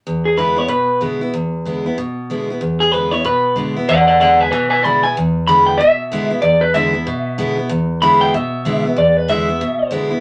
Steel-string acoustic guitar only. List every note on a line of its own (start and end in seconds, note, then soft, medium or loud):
0.07 0.67 E2 medium
0.37 0.56 D3 medium
0.37 0.56 G#3 medium
0.37 0.56 B3 medium
0.37 0.55 E4 medium
0.56 0.69 B3 soft
0.56 0.68 E4 medium
0.68 1.30 B2 medium
1.01 1.19 D3 medium
1.01 1.20 G#3 medium
1.01 1.20 B3 medium
1.01 1.20 E4 medium
1.21 1.33 B3 soft
1.21 1.33 E4 medium
1.34 1.94 E2 medium
1.65 1.84 D3 medium
1.65 1.84 G#3 medium
1.65 1.84 B3 medium
1.65 1.85 E4 medium
1.86 1.98 B3 soft
1.86 1.97 E4 medium
1.98 2.59 B2 medium
2.30 2.48 D3 medium
2.30 2.48 G#3 medium
2.30 2.48 B3 medium
2.30 2.49 E4 medium
2.50 2.62 B3 medium
2.50 2.61 E4 medium
2.61 3.22 E2 medium
2.93 3.11 D3 medium
2.93 3.12 G#3 medium
2.93 3.12 B3 medium
2.93 3.11 E4 medium
3.12 3.24 B3 soft
3.12 3.24 E4 medium
3.25 3.86 B2 medium
3.56 3.75 D3 medium
3.56 3.75 G#3 medium
3.56 3.75 B3 medium
3.56 3.75 E4 medium
3.76 3.88 B3 soft
3.76 3.88 E4 medium
3.89 4.50 E2 medium
4.21 4.51 D3 medium
4.21 4.51 G#3 medium
4.21 4.51 B3 medium
4.21 4.52 E4 medium
4.53 5.13 B2 medium
4.84 5.03 D3 medium
4.84 5.03 G#3 medium
4.84 5.03 B3 medium
4.84 5.03 E4 medium
5.04 5.16 B3 soft
5.04 5.15 E4 medium
5.17 5.77 E2 medium
5.48 5.78 D3 medium
5.48 5.78 G#3 medium
5.48 5.79 B3 medium
5.48 5.79 E4 loud
5.81 6.41 B2 medium
6.12 6.30 D3 medium
6.12 6.31 G#3 medium
6.12 6.31 B3 medium
6.12 6.29 E4 loud
6.31 6.43 B3 soft
6.31 6.42 E4 medium
6.42 7.04 E2 medium
6.74 6.93 D3 medium
6.74 6.93 G#3 medium
6.74 6.94 B3 medium
6.74 6.92 E4 loud
6.94 7.06 B3 soft
6.94 7.06 E4 medium
7.07 7.68 B2 medium
7.38 7.57 D3 medium
7.38 7.57 G#3 medium
7.38 7.57 B3 medium
7.38 7.56 E4 loud
7.57 7.70 B3 medium
7.57 7.69 E4 medium
7.69 8.31 E2 medium
8.02 8.32 D3 medium
8.02 8.33 G#3 loud
8.02 8.33 B3 medium
8.02 8.33 E4 medium
8.34 8.95 B2 medium
8.65 8.84 D3 medium
8.65 8.84 G#3 medium
8.65 8.84 B3 medium
8.65 8.84 E4 medium
8.85 8.98 B3 medium
8.85 8.97 E4 medium
8.96 9.58 E2 medium
9.28 9.47 D3 medium
9.28 9.48 G#3 medium
9.28 9.48 B3 medium
9.28 9.48 E4 medium
9.49 9.61 B3 soft
9.49 9.61 E4 medium
9.61 10.20 B2 medium
9.91 10.10 D3 medium
9.91 10.11 G#3 medium
9.91 10.11 B3 medium
9.91 10.09 E4 loud
10.11 10.20 B3 soft
10.11 10.20 E4 medium